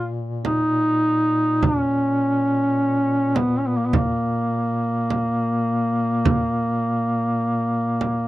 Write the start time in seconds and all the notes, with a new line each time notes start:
Already playing: A#2 F4
0.45 D#4, frame drum
1.63 C#4, frame drum
3.36 B3, frame drum
3.59 C#4
3.67 B3
3.78 A#3
3.86 B3
3.93 A#3, frame drum
5.10 frame drum
6.25 frame drum
8.01 frame drum